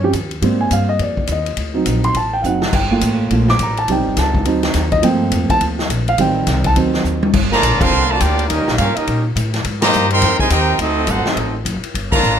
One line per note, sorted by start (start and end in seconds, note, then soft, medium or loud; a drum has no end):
0.00 0.12 G2 medium
0.00 0.13 F3 soft
0.00 0.13 G3 soft
0.00 0.13 C4 soft
0.04 0.13 C#4 medium
0.04 0.10 G4 medium
0.13 0.41 D#2 loud
0.13 kick soft
0.13 hi-hat pedal medium
0.13 ride medium
0.31 ride soft
0.42 0.70 G#2 medium
0.42 1.54 G3 medium
0.42 1.54 A#3 soft
0.42 1.54 C4 medium
0.42 kick soft
0.42 ride medium
0.61 0.71 G#5 medium
0.71 0.99 G2 loud
0.71 0.89 F5 medium
0.71 kick soft
0.71 hi-hat pedal medium
0.71 ride medium
0.89 1.00 D#5 medium
0.99 1.27 F2 medium
0.99 1.28 D5 medium
0.99 kick soft
0.99 ride medium
1.17 kick medium
1.27 1.57 D#2 loud
1.27 kick soft
1.27 hi-hat pedal medium
1.27 ride medium
1.32 1.74 D#5 medium
1.46 ride medium
1.57 1.85 D2 medium
1.57 kick soft
1.57 ride medium
1.74 2.12 F#3 medium
1.74 2.13 C4 soft
1.74 2.13 D#4 medium
1.86 2.14 A#1 medium
1.86 kick soft
1.86 hi-hat pedal medium
1.86 ride medium
2.04 2.15 C6 medium
2.04 ride medium
2.15 2.43 A1 medium
2.15 2.33 A5 medium
2.15 kick soft
2.15 ride medium
2.33 2.44 G5 medium
2.42 2.72 F#1 loud
2.42 2.60 F#3 soft
2.42 2.61 C4 soft
2.42 2.61 D#4 medium
2.42 2.44 F5 soft
2.42 hi-hat pedal medium
2.46 2.72 F#5 medium
2.62 snare medium
2.73 3.01 G1 medium
2.73 3.17 G5 medium
2.73 kick medium
2.73 crash medium
2.91 3.29 A3 medium
2.91 3.29 A#3 medium
2.91 3.29 F4 medium
3.01 3.30 A1 loud
3.01 kick soft
3.01 hi-hat pedal medium
3.01 ride medium
3.31 3.59 A#1 medium
3.31 3.47 A3 soft
3.31 3.47 A#3 soft
3.31 3.48 F4 medium
3.31 kick soft
3.31 ride medium
3.48 3.60 D6 loud
3.48 snare medium
3.59 3.87 A1 loud
3.59 3.79 A#5 medium
3.59 kick soft
3.59 hi-hat pedal medium
3.59 ride medium
3.77 3.89 A5 medium
3.77 ride medium
3.88 3.98 C2 medium
3.88 4.44 G3 medium
3.88 4.44 C4 soft
3.88 4.44 D#4 medium
3.88 4.17 G5 medium
3.88 kick soft
3.88 ride medium
3.98 4.07 A1 medium
4.07 4.16 G1 medium
4.17 4.45 C#2 loud
4.17 4.62 A5 medium
4.17 kick soft
4.17 snare soft
4.17 hi-hat pedal medium
4.17 ride medium
4.35 kick medium
4.45 4.74 D2 medium
4.45 5.00 F#3 medium
4.45 5.01 C4 soft
4.45 5.01 D#4 medium
4.45 kick soft
4.45 ride medium
4.63 snare medium
4.63 ride soft
4.74 5.02 D#2 loud
4.74 kick soft
4.74 snare soft
4.74 hi-hat pedal medium
4.74 ride medium
4.92 5.03 D#5 medium
4.92 kick medium
4.92 ride medium
5.02 5.31 G2 medium
5.02 6.14 F3 medium
5.02 6.14 A3 soft
5.02 6.14 A#3 soft
5.02 6.15 C4 medium
5.02 5.47 G5 medium
5.02 kick soft
5.02 ride medium
5.32 5.49 F2 loud
5.32 kick soft
5.32 hi-hat pedal medium
5.32 ride medium
5.49 5.61 A5 loud
5.49 muted upright bass stroke soft
5.49 kick medium
5.49 ride medium
5.60 5.89 D2 medium
5.60 kick soft
5.60 ride medium
5.79 snare medium
5.89 6.17 A#1 loud
5.89 kick soft
5.89 hi-hat pedal medium
5.89 ride medium
6.08 6.19 F5 medium
6.08 ride soft
6.18 6.46 A1 medium
6.18 6.63 D#3 medium
6.18 6.63 G3 soft
6.18 6.64 C4 medium
6.18 6.63 G5 medium
6.18 kick soft
6.18 ride medium
6.47 6.75 C2 loud
6.47 kick soft
6.47 snare soft
6.47 hi-hat pedal medium
6.47 ride medium
6.64 6.73 A5 medium
6.64 kick medium
6.64 ride medium
6.76 7.04 D2 loud
6.76 7.31 D#3 medium
6.76 7.31 F#3 medium
6.76 7.31 C4 medium
6.76 kick soft
6.76 ride medium
6.94 snare medium
7.04 7.33 D#2 loud
7.04 hi-hat pedal medium
7.23 high tom medium
7.33 7.62 G1 medium
7.33 kick medium
7.33 crash loud
7.51 7.79 D3 medium
7.51 7.79 F3 medium
7.51 7.78 A#3 loud
7.51 7.79 F4 medium
7.51 7.79 A4 loud
7.51 7.79 D5 loud
7.51 7.79 A#5 loud
7.51 snare medium
7.63 7.73 A#1 loud
7.63 kick soft
7.63 hi-hat pedal medium
7.63 ride medium
7.73 7.81 G1 medium
7.80 7.90 F1 medium
7.80 8.05 D3 loud
7.80 8.06 F3 loud
7.80 8.09 C4 loud
7.80 8.10 A#4 loud
7.80 8.10 F5 medium
7.80 8.10 A5 loud
7.80 8.10 C6 loud
7.80 kick loud
7.80 crash medium
7.91 8.19 C2 medium
8.06 8.19 D3 medium
8.06 8.19 F3 medium
8.06 8.19 A3 medium
8.11 8.21 F4 medium
8.11 8.21 A#4 medium
8.11 8.21 D5 medium
8.11 8.21 A5 loud
8.18 8.49 D2 loud
8.18 8.47 A#3 medium
8.18 8.48 D4 medium
8.18 8.48 G4 medium
8.18 kick soft
8.18 hi-hat pedal medium
8.18 ride medium
8.22 8.50 F4 medium
8.22 8.48 A#4 medium
8.22 8.50 D5 medium
8.22 8.50 G5 loud
8.39 ride medium
8.47 8.60 D#2 medium
8.47 8.75 G3 medium
8.47 8.75 A#3 medium
8.47 8.76 C#4 medium
8.47 8.75 D#4 medium
8.47 8.76 G4 medium
8.47 8.76 A#4 medium
8.47 8.76 D#5 medium
8.47 kick soft
8.47 ride medium
8.60 8.68 C#2 medium
8.68 8.78 A#1 medium
8.68 snare medium
8.78 8.95 G2 loud
8.78 8.95 A#3 medium
8.78 8.95 C#4 medium
8.78 8.95 F4 medium
8.78 8.95 G4 medium
8.78 8.95 A#4 medium
8.78 8.95 F5 loud
8.78 kick soft
8.78 hi-hat pedal medium
8.78 ride medium
8.96 9.25 G3 medium
8.96 9.25 A#3 medium
8.96 9.25 C#4 medium
8.96 9.25 D#4 medium
8.96 9.25 G4 medium
8.96 9.25 A#4 medium
8.96 9.25 D#5 medium
8.96 muted upright bass stroke soft
8.96 ride medium
9.07 9.35 A#2 loud
9.07 kick soft
9.07 ride medium
9.36 9.64 A2 loud
9.36 kick soft
9.36 hi-hat pedal medium
9.36 ride medium
9.54 snare soft
9.54 ride medium
9.64 9.92 G#2 medium
9.64 kick soft
9.64 ride medium
9.80 10.08 D#3 medium
9.80 10.08 G3 medium
9.80 10.08 A#3 medium
9.80 10.10 G4 loud
9.80 10.09 C5 loud
9.80 10.10 D#5 loud
9.80 10.09 A#5 loud
9.80 snare medium
9.80 ride medium
9.93 10.21 G2 loud
9.93 hi-hat pedal medium
10.10 10.37 D#3 loud
10.10 10.37 G3 loud
10.10 10.37 C4 loud
10.10 10.39 A#4 loud
10.10 10.39 G5 loud
10.10 10.39 C6 loud
10.10 ride medium
10.14 10.39 D#5 loud
10.22 10.50 F2 medium
10.22 kick soft
10.22 snare soft
10.22 ride medium
10.38 10.50 C3 medium
10.38 10.49 D#3 medium
10.38 10.50 G#3 medium
10.38 10.51 D#4 loud
10.38 10.50 A#4 loud
10.38 10.51 C5 loud
10.38 10.50 G#5 loud
10.38 kick medium
10.49 10.78 D#2 loud
10.49 10.77 C4 medium
10.49 10.77 D#4 medium
10.49 10.78 D#4 medium
10.49 10.77 G4 medium
10.49 10.78 A#4 medium
10.49 10.78 C5 medium
10.49 10.78 G5 loud
10.49 kick soft
10.49 hi-hat pedal medium
10.49 ride medium
10.79 11.07 D2 medium
10.79 11.07 A3 medium
10.79 11.07 C4 medium
10.79 11.10 C4 medium
10.79 11.08 D#4 medium
10.79 11.09 F#4 medium
10.79 11.10 A4 medium
10.79 11.10 D#5 loud
10.79 kick soft
10.79 ride medium
11.07 11.25 G1 loud
11.07 11.24 A3 medium
11.07 11.24 C4 medium
11.07 11.26 F#4 medium
11.07 11.27 A4 medium
11.07 11.27 C5 medium
11.07 11.27 F#5 loud
11.07 kick soft
11.07 hi-hat pedal medium
11.07 ride medium
11.11 11.27 D#4 medium
11.25 11.54 A3 medium
11.25 11.54 C4 medium
11.25 11.56 C4 medium
11.25 11.54 D#4 medium
11.25 11.56 A4 medium
11.25 11.56 D#5 medium
11.25 muted upright bass stroke soft
11.25 snare medium
11.29 11.56 F#4 medium
11.36 11.64 A1 medium
11.36 kick soft
11.36 ride medium
11.65 11.82 F#1 loud
11.65 kick soft
11.65 hi-hat pedal medium
11.65 ride medium
11.84 ride medium
11.94 12.22 G1 medium
11.94 kick soft
11.94 ride medium
12.11 12.39 D3 medium
12.11 12.39 F3 medium
12.11 12.38 A#3 loud
12.11 12.39 F4 loud
12.11 12.39 A4 loud
12.11 12.39 D5 medium
12.11 12.39 A#5 loud
12.11 kick loud
12.11 crash medium
12.23 12.39 A1 loud
12.23 hi-hat pedal medium